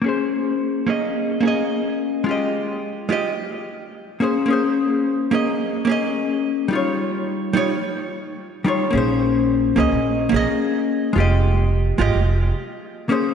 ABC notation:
X:1
M:4/4
L:1/16
Q:"Swing 16ths" 1/4=108
K:Bbdor
V:1 name="Hollow-body jazz guitar"
[B,DAc]6 [B,DAe]4 [B,DAe]6 | [A,FGe]6 [A,FGe]2 z6 [B,DAc]2 | [B,DAc]6 [B,DAe]4 [B,DAe]6 | [G,EFd]6 [G,EFd]2 z6 [G,EFd]2 |
[B,DAc]6 [B,DAe]4 [B,DAe]6 | [A,FGe]6 [A,FGe]2 z6 [B,DAc]2 |]
V:2 name="Upright bass" clef=bass
z16 | z16 | z16 | z16 |
B,,,6 D,, B,,,3 B,,, z4 z | F,,,6 A,,, F,,,3 z6 |]